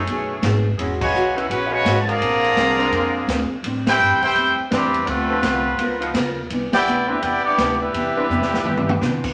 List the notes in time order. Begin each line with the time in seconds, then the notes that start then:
Already playing: A3 C#4 G#4 C#5
0.07 B1 B2 A3 D#4 G#4, ride
0.42 G#1 B2 A3 D#4 G#4, snare, hi-hat pedal, ride
0.78 E1 E3 F#3 G#3 C#4 E4 F#4 G#4, ride
1.01 B2 C#3 G#3 F#4 B4 C#5 G#5, kick, crash
1.14 B1 E3 G#3 C#4 F#4, hi-hat pedal
1.37 F#3 B3 C#4 E4 G#4 B4 E5, ride
1.49 A#1 E3 G#3 B3 C#4 F#4 G#4 B4 F#5, ride
1.70 B2 C#3 G#3 F#4 B4 C#5 G#5
1.85 G#1 E3 G#3 C#4 F#4, snare, hi-hat pedal, ride
2.00 A5
2.06 D3 F3 A#3 G#4 D5 F5 A#5, ride
2.20 A#1 A#2 G#3 C4 D4, ride
2.44 ride
2.56 C2 A#2 G#3 C4 D4, snare, hi-hat pedal, ride
2.79 G#3 C4 D4 A#4, ride
2.91 F2 A#2 G#3 C4 D4, ride
3.27 D2 A#2 G#3 C4 D4, snare, hi-hat pedal, ride
3.50 muted upright bass stroke
3.63 A2 G3 C4 D4, ride
3.87 C4 E4 G4 B4 C5 G5, snare, ride
3.99 G2 A2 G3 C4 D4, hi-hat pedal
4.11 E2
4.22 C2 C4 E4 G4 B4 C5 G5, ride
4.35 F2 A2 G3 C4 D4, ride
4.58 muted upright bass stroke
4.70 E2 A2 E3 G3 C4 D4 G4 B4 D5, snare, hi-hat pedal, ride
4.94 ride
5.06 D2 C3 D3 F3 A3 B3 C4 D4 F4 B4, ride
5.29 F3 C4 D4 A4
5.42 C2 D3 A3 C4 F4, snare, hi-hat pedal, ride
5.78 C#2 C#3 B3 F4 A#4, ride
6.01 F3 B3 D#4 F4, ride
6.14 D#2 C#3 B3 F4 A#4, snare, hi-hat pedal, ride
6.50 C2 C3 E3 B3 D4, ride
6.73 B3 E4 G4 B4 D5 G5, muted upright bass stroke, snare, ride
6.86 D2 C3 E3 B3 D4, hi-hat pedal
7.08 E3 G3 B3 C4 D4 E4 G4 B4 E5
7.21 E2 C3 E3 B3 E4 G4 B4 D5 G5, ride
7.25 D4
7.44 G3 B3 D4 E4 G4 D5, muted upright bass stroke
7.57 D2 C3 E3 B3 D4, snare, hi-hat pedal, ride
7.81 G3 B3 D4 E4 G4 B4 E5
7.93 E2 C3 E3 B3 D4, ride
8.16 E3 C4 D4 B4, muted upright bass stroke
8.29 F2 C3 E3 B3 D4, hi-hat pedal
8.41 E2, snare
8.54 C2, snare
8.65 G2 C3 E3 B3 D4, mid tom
8.77 mid tom
8.89 mid tom
9.01 B2 C3 E3 B3 D4 B4 C5, snare, hi-hat pedal
9.24 kick, crash